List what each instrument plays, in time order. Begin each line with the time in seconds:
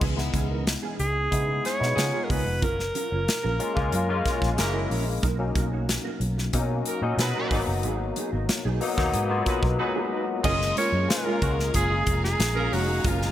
0.01 fingered electric bass C#2, clean electric guitar E3 B3 C#4 G#4, kick, crash
0.16 tine electric piano G#3 B3 D#4 E4, muted clean electric guitar stroke, snare
0.34 fingered electric bass C#2, clean electric guitar E3 B3 C#4 G#4, kick, closed hi-hat
0.50 clean electric guitar E3 B3 C#4 A#4
0.67 muted clean electric guitar stroke, snare, closed hi-hat
0.83 clean electric guitar E3 B3 C#4 G#4
0.99 fingered electric bass C#2, alto saxophone G#4, muted clean electric guitar stroke, closed hi-hat
1.16 muted clean electric guitar stroke
1.31 fingered electric bass C#3, tine electric piano G#3 B3 D#4 E4, muted clean electric guitar stroke, kick, closed hi-hat
1.48 muted clean electric guitar stroke
1.64 horn section C#4 E4 G#4, alto saxophone C#5, snare, closed hi-hat
1.79 fingered electric bass B2, tine electric piano G#3 B3 D#4 E4, muted clean electric guitar stroke, snare
1.95 fingered electric bass C#3, tine electric piano G#3 B3 D#4 F4, horn section C#4 F4 G#4, muted clean electric guitar stroke, closed hi-hat
1.99 snare
2.13 clean electric guitar G#3 B3 F4 G#4
2.24 alto saxophone A#4
2.30 fingered electric bass C#2, clean electric guitar G#3 B3 F4 A#4, alto saxophone B4, kick, open hi-hat
2.46 fingered electric bass F1, muted clean electric guitar stroke
2.62 fingered electric bass F#1, clean electric guitar F#3 C#4 F4 A#4, alto saxophone A#4, kick, closed hi-hat
2.79 muted clean electric guitar stroke, snare
2.95 clean electric guitar F#3 C#4 F4 A#4, closed hi-hat
3.11 fingered electric bass F#1, clean electric guitar F#3 C#4 F4 C#5
3.27 muted clean electric guitar stroke, snare, closed hi-hat
3.43 fingered electric bass A#1, clean electric guitar F#3 C#4 F4 A#4
3.59 tine electric piano G#3 A#3 C#4 F4, muted clean electric guitar stroke, closed hi-hat
3.75 fingered electric bass C#2, tine electric piano G#3 A#3 C#4 F4, muted clean electric guitar stroke, kick
3.92 fingered electric bass F#2, muted clean electric guitar stroke, closed hi-hat
4.09 tine electric piano G#3 A#3 C#4 F4, muted clean electric guitar stroke
4.25 horn section A#3 F#4 A#4, kick, snare, closed hi-hat
4.41 fingered electric bass A#1, muted clean electric guitar stroke, kick, snare
4.57 fingered electric bass F#1, tine electric piano G#3 A#3 C#4 E4, horn section E4 F#4 A#4, muted clean electric guitar stroke, snare, closed hi-hat
4.73 clean electric guitar F#3 C#4 E4 A#4
4.90 fingered electric bass A#1, clean electric guitar F#3 C#4 E4 C#5, open hi-hat
5.07 muted clean electric guitar stroke
5.22 fingered electric bass B1, clean electric guitar A#3 D#4 F#4 A#4, kick, closed hi-hat
5.39 tine electric piano F#3 A#3 C#4 D#4, muted clean electric guitar stroke
5.55 fingered electric bass B1, clean electric guitar A#3 D#4 F#4 A#4, kick, closed hi-hat
5.72 clean electric guitar A#3 D#4 F#4 C#5
5.88 muted clean electric guitar stroke, snare, closed hi-hat
6.04 clean electric guitar A#3 D#4 F#4 A#4
6.20 fingered electric bass B1, muted clean electric guitar stroke, closed hi-hat
6.37 muted clean electric guitar stroke, snare
6.53 fingered electric bass B2, tine electric piano F#3 A#3 C#4 D#4, muted clean electric guitar stroke, kick, closed hi-hat
6.70 muted clean electric guitar stroke
6.85 horn section D#4 F#4 A#4, closed hi-hat
7.02 fingered electric bass A#2, tine electric piano A#2 F#3 C#4 D#4, muted clean electric guitar stroke
7.17 fingered electric bass B2, horn section F#4 G#4 B4, muted clean electric guitar stroke, snare, closed hi-hat
7.36 clean electric guitar A#3 D#4 F#4 A#4
7.51 fingered electric bass G#1, tine electric piano F#3 A#3 B3 D#4, clean electric guitar F#3 B3 D#4 A#4, kick, open hi-hat
7.67 fingered electric bass F#1, muted clean electric guitar stroke
7.83 fingered electric bass G#1, clean electric guitar F#3 B3 D#4 G#4, closed hi-hat
8.00 muted clean electric guitar stroke
8.16 clean electric guitar F#3 B3 D#4 G#4, closed hi-hat
8.32 fingered electric bass G#1, clean electric guitar F#3 B3 D#4 A#4
8.48 muted clean electric guitar stroke, snare, closed hi-hat
8.65 fingered electric bass B1, clean electric guitar F#3 B3 D#4 G#4
8.80 tine electric piano F#3 A#3 B3 D#4, muted clean electric guitar stroke, open hi-hat
8.97 fingered electric bass D#2, tine electric piano F#3 A#3 B3 D#4, muted clean electric guitar stroke, kick, snare
9.14 fingered electric bass G#2, muted clean electric guitar stroke, closed hi-hat
9.29 tine electric piano F#3 A#3 B3 F4, muted clean electric guitar stroke
9.46 horn section F#4 G#4 B4, kick, closed hi-hat
9.62 fingered electric bass B1, muted clean electric guitar stroke, kick
9.78 tine electric piano F#3 G#3 B3 D#4, horn section F#4 G#4 B4, muted clean electric guitar stroke
9.95 clean electric guitar F#3 B3 D#4 G#4
10.11 clean electric guitar F#3 B3 D#4 A#4
10.28 muted clean electric guitar stroke
10.43 fingered electric bass F#1, tine electric piano G#3 A#3 C#4 F4, clean electric guitar G#3 C#4 F4 A#4, horn section C#4 F4 G#4, string section G#4 F5 G#5 A#5, alto saxophone D#5, kick, crash
10.60 muted clean electric guitar stroke, snare
10.76 clean electric guitar G#3 C#4 F4 A#4, horn section C#4 F4 A#4, alto saxophone C#5, closed hi-hat
10.92 fingered electric bass F#2, clean electric guitar G#3 C#4 F4 C#5
11.08 tine electric piano G#3 A#3 C#4 F4, alto saxophone A#4, snare, closed hi-hat
11.24 tine electric piano G#3 A#3 C#4 F4, clean electric guitar G#3 C#4 F4 A#4, horn section A#3 C#4 F4
11.42 fingered electric bass C#2, horn section A#3 C#4 F#4, muted clean electric guitar stroke, kick, closed hi-hat
11.58 muted clean electric guitar stroke, snare
11.74 fingered electric bass F#1, horn section C#4 F4 G#4, alto saxophone G#4, muted clean electric guitar stroke, kick, closed hi-hat
11.90 muted clean electric guitar stroke
12.07 fingered electric bass F1, kick, closed hi-hat
12.23 alto saxophone G#4, muted clean electric guitar stroke, snare
12.39 fingered electric bass A#1, muted clean electric guitar stroke, snare, closed hi-hat
12.55 clean electric guitar G#3 C#4 F4 A#4, horn section C#4 F4 A#4
12.71 fingered electric bass F1, tine electric piano G#3 A#3 C#4 D#4, clean electric guitar G#3 C#4 F4 C#5, alto saxophone F#4, open hi-hat
12.88 muted clean electric guitar stroke
13.04 fingered electric bass F#1, clean electric guitar G#3 C#4 F4 A#4, alto saxophone F4, kick, closed hi-hat
13.21 muted clean electric guitar stroke, snare